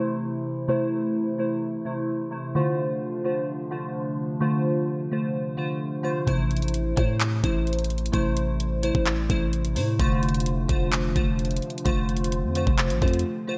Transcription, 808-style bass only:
6.27 6.94 A1 loud
6.97 7.42 A2 loud
7.44 8.11 A1 loud
8.14 8.92 A1 loud
8.95 9.28 A1 loud
9.30 9.78 A1 loud
9.76 9.98 A2 loud
10.00 10.67 F1 loud
10.69 11.14 F1 loud
11.16 11.61 F1 loud
11.86 12.45 F1 loud
12.44 12.66 F2 loud
12.67 12.92 F1 loud
12.90 13.01 A1 loud
13.02 13.24 F2 loud

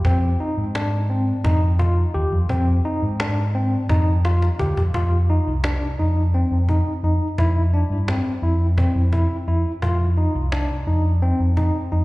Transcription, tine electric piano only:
0.05 0.28 C4 medium
0.40 0.63 D#4 medium
0.75 0.98 D4 medium
1.10 1.32 C4 medium
1.44 1.67 D#4 medium
1.79 2.02 F4 medium
2.14 2.37 G4 medium
2.50 2.72 C4 medium
2.85 3.08 D#4 medium
3.20 3.43 D4 medium
3.55 3.77 C4 medium
3.90 4.12 D#4 medium
4.25 4.48 F4 medium
4.59 4.82 G4 medium
4.95 5.17 F4 medium
5.30 5.52 D#4 medium
5.64 5.87 D4 medium
5.99 6.22 D#4 medium
6.34 6.57 C4 medium
6.69 6.92 D#4 medium
7.04 7.27 D#4 medium
7.39 7.62 E4 medium
7.74 7.96 D4 medium
8.09 8.31 C4 medium
8.43 8.66 E4 medium
8.78 9.01 C4 medium
9.13 9.36 E4 medium
9.48 9.71 E4 medium
9.82 10.05 F4 medium
10.17 10.40 D#4 medium
10.53 10.76 D4 medium
10.87 11.10 D#4 medium
11.22 11.45 C4 medium
11.57 11.80 D#4 medium
11.92 12.04 D#4 medium

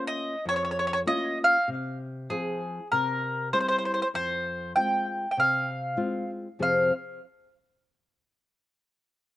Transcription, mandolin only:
0.07 0.44 D#5 medium
0.49 0.55 C#5 loud
0.56 0.62 C#5 medium
0.65 0.70 C#5 medium
0.71 0.78 C#5 medium
0.79 0.85 C#5 medium
0.87 0.92 C#5 medium
0.93 0.99 C#5 medium
1.08 1.38 D#5 loud
1.44 1.68 F5 medium
2.30 2.87 G#4 medium
2.92 3.48 A#4 medium
3.53 3.59 C5 medium
3.60 3.67 C5 medium
3.68 3.76 C5 medium
3.78 3.84 C5 medium
3.85 3.92 C5 medium
3.94 3.99 C5 medium
4.02 4.07 C5 medium
4.15 4.71 C5 loud
4.76 5.30 G5 medium
5.31 5.37 G5 medium
5.40 6.29 F5 medium
6.63 6.92 F5 medium

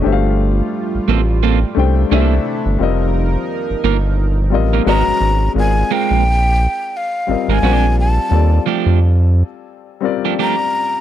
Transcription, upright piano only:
0.02 1.16 A3 medium
0.02 1.16 D4 medium
0.02 1.17 G4 medium
0.02 1.17 C5 medium
0.06 0.12 E5 medium
0.12 1.21 F5 medium
1.75 2.08 A3 medium
1.75 2.09 D4 medium
1.75 2.10 G4 medium
1.75 2.11 C5 medium
1.79 2.12 G5 medium
2.10 2.68 A3 medium
2.10 2.69 D4 medium
2.10 2.69 G4 medium
2.10 2.70 C5 medium
2.10 2.70 E5 loud
2.78 3.92 G3 medium
2.78 3.93 C4 medium
2.78 3.93 F4 medium
2.78 3.94 A#4 medium
2.83 3.94 D#5 medium
4.50 4.85 G3 medium
4.50 4.86 C4 medium
4.50 4.86 F4 medium
4.50 4.87 A#4 medium
4.54 4.87 D#5 medium
4.85 5.44 G#3 medium
4.85 5.44 C#4 medium
4.85 5.45 F#4 medium
4.85 5.45 B4 medium
4.89 5.46 D#5 medium
5.54 6.68 G#3 medium
5.54 6.68 C4 medium
5.54 6.69 F4 medium
5.54 6.69 A#4 medium
5.54 6.70 D5 medium
7.27 7.59 G3 medium
7.27 7.60 C4 medium
7.27 7.61 F4 medium
7.27 7.62 A#4 medium
7.31 7.64 D#5 medium
7.60 8.19 G3 medium
7.60 8.20 C4 medium
7.60 8.21 F4 medium
7.60 8.21 A#4 medium
7.65 7.71 C5 medium
7.71 8.25 D5 medium
8.29 9.43 G3 medium
8.29 9.44 C4 medium
8.29 9.44 F4 medium
8.29 9.45 A4 medium
8.33 9.45 D5 medium
10.01 10.88 G3 medium
10.01 10.89 C4 medium
10.01 10.90 F4 medium
10.01 10.90 A#4 medium
10.05 10.91 D5 medium

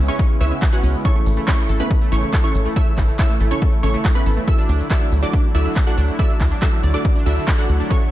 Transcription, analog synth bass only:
0.00 0.11 C#2 medium
0.41 0.54 C#2 medium
0.83 0.96 C#2 medium
1.26 1.39 A1 loud
1.69 1.82 A1 medium
2.12 2.25 A1 medium
2.55 2.68 A1 medium
2.98 3.11 A1 loud
3.40 3.54 A1 medium
3.83 3.96 A1 medium
4.26 4.39 A1 medium
4.69 4.82 D2 loud
5.12 5.25 D2 medium
5.55 5.68 D2 medium
5.98 6.11 D2 medium
6.41 6.54 D2 loud
6.84 6.96 D2 medium
7.26 7.39 D2 medium
7.69 7.82 D2 medium

